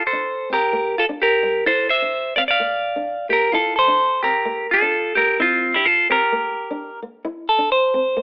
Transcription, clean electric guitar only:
0.07 0.48 A4 medium
0.07 0.52 C5 medium
0.53 0.94 G4 medium
0.53 0.99 A#4 medium
0.98 1.04 F4 medium
0.98 1.05 A4 medium
1.22 1.64 G4 medium
1.22 1.64 A#4 medium
1.66 1.88 A4 medium
1.66 1.88 C5 loud
1.89 2.33 C5 medium
1.89 2.33 E5 medium
2.36 2.41 D5 medium
2.36 2.43 F5 loud
2.48 3.25 D5 medium
2.48 3.27 F5 medium
3.30 3.51 G4 medium
3.30 3.54 A#4 medium
3.52 3.74 F4 medium
3.52 3.75 A4 medium
3.76 4.19 A4 medium
3.76 4.21 C5 medium
4.23 4.66 G4 medium
4.23 4.71 A#4 loud
4.71 5.14 F4 medium
4.71 5.17 A4 medium
5.15 5.37 G4 medium
5.15 5.38 A#4 medium
5.40 5.72 C4 medium
5.40 5.73 F4 medium
5.74 5.85 E4 medium
5.74 5.86 G4 medium
5.85 6.07 F4 medium
5.85 6.10 A4 medium
6.11 6.98 G4 medium
6.11 6.99 A#4 medium
7.49 7.71 A4 medium
7.72 8.22 C5 medium

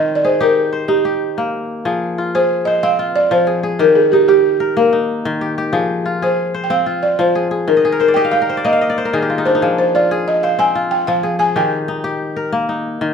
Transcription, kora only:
0.00 1.91 D#3 medium
0.00 1.24 C4 medium
0.00 0.47 F4 medium
0.24 1.11 G#4 medium
0.40 0.88 D#4 medium
0.40 1.04 G4 medium
0.73 1.91 C5 medium
0.88 2.51 D#4 medium
1.05 1.91 G4 medium
1.38 3.31 A#3 medium
1.85 3.30 F3 medium
1.85 2.34 G#4 medium
2.18 2.99 F4 medium
2.35 3.46 G#4 medium
2.67 3.86 C5 medium
2.83 4.63 C4 medium
2.99 4.50 F4 medium
3.31 3.85 F3 medium
3.47 3.63 G#4 medium
3.63 4.34 G#4 medium
3.79 5.24 D#3 medium
3.79 4.28 G4 medium
4.13 4.92 D#4 medium
4.28 5.41 G4 medium
4.60 5.87 A#4 medium
4.77 6.70 A#3 medium
4.93 6.55 D#4 medium
5.25 5.78 D#3 medium
5.41 5.57 G4 medium
5.58 6.28 G4 medium
5.73 7.18 F3 medium
5.73 6.22 G#4 medium
6.06 6.86 F4 medium
6.22 7.35 G#4 medium
6.54 7.73 C5 medium
6.70 8.50 C4 medium
6.86 8.38 F4 medium
7.19 7.72 F3 medium
7.35 7.51 G#4 medium
7.51 7.84 G#4 medium
7.68 9.12 D#3 medium
7.77 8.14 D#5 medium
7.85 8.22 G#4 medium
7.92 8.41 A#4 medium
8.00 8.49 C5 medium
8.08 8.57 D5 medium
8.16 9.20 G4 medium
8.16 8.63 D#5 medium
8.25 8.72 F5 medium
8.33 9.20 G5 medium
8.42 9.05 A#4 medium
8.49 8.97 C5 medium
8.57 8.87 D5 medium
8.64 10.58 A#3 medium
8.64 8.81 D#5 medium
8.73 9.73 F5 medium
8.81 9.52 D#5 medium
8.90 9.19 D5 medium
8.98 10.17 C5 medium
9.05 10.32 A#4 medium
9.13 9.67 D#3 medium
9.13 9.62 G#4 medium
9.22 9.68 G4 medium
9.30 9.95 F4 medium
9.38 9.54 D#4 medium
9.46 11.14 D4 medium
9.55 11.17 D#4 medium
9.62 11.07 F3 medium
9.62 10.11 G#4 medium
9.95 10.75 F4 medium
10.11 11.23 G#4 medium
10.44 11.62 C5 medium
10.59 12.39 C4 medium
10.75 12.27 F4 medium
11.08 11.61 F3 medium
11.23 11.39 G#4 medium
11.39 12.10 G#4 medium
11.56 13.00 D#3 medium
11.56 12.04 G4 medium
11.88 12.69 D#4 medium
12.04 13.14 G4 medium
12.36 13.14 A#4 medium
12.52 13.14 A#3 medium
12.69 13.14 D#4 medium
13.01 13.14 D#3 medium

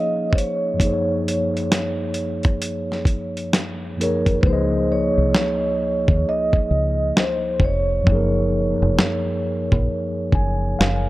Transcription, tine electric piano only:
0.00 0.75 F3 soft
0.00 0.78 A#3 soft
0.00 0.79 D#4 soft
0.00 0.80 G#4 soft
0.00 0.81 C#5 soft
0.74 3.91 F#2 medium
0.74 3.92 F3 soft
0.79 3.93 A#3 medium
0.79 3.95 D#4 medium
0.85 3.96 G#4 medium
0.85 0.91 C5 medium
0.94 4.01 C#5 medium
3.97 4.42 F#2 soft
3.97 4.41 F3 soft
3.97 4.43 A#3 medium
3.97 4.44 D#4 soft
4.01 4.45 G#4 medium
4.01 4.46 C#5 medium
4.40 8.01 C#2 medium
4.40 8.02 F3 medium
4.45 8.03 A#3 medium
4.45 8.05 D#4 medium
4.50 8.06 G#4 medium
4.50 8.07 D#5 medium
8.01 11.09 F#2 medium
8.01 11.09 F3 medium
8.06 8.15 A3 soft
8.06 11.09 D#4 medium
8.12 11.09 A#3 medium
8.12 11.09 G#4 medium
8.12 11.09 A#4 medium
10.35 10.77 G#5 medium
10.79 11.09 F5 medium

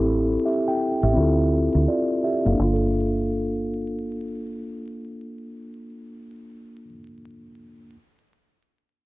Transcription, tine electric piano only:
0.00 0.63 C4 medium
0.00 0.61 E4 medium
0.00 0.45 G4 medium
0.00 0.47 A4 medium
0.46 0.67 G4 medium
0.46 0.66 E5 medium
0.68 1.01 G5 medium
1.04 1.37 G4 medium
1.04 1.37 E5 medium
1.13 2.16 C4 medium
1.13 1.87 E4 medium
1.18 1.88 F4 medium
1.18 1.89 A4 medium
1.88 2.22 F4 medium
1.88 2.21 D5 medium
2.24 2.45 G4 medium
2.24 2.45 E5 medium
2.45 6.84 A#3 medium
2.45 2.72 A4 soft
2.45 2.80 F5 medium
2.55 6.88 D4 medium
2.64 6.93 F4 medium
2.74 6.98 A4 medium

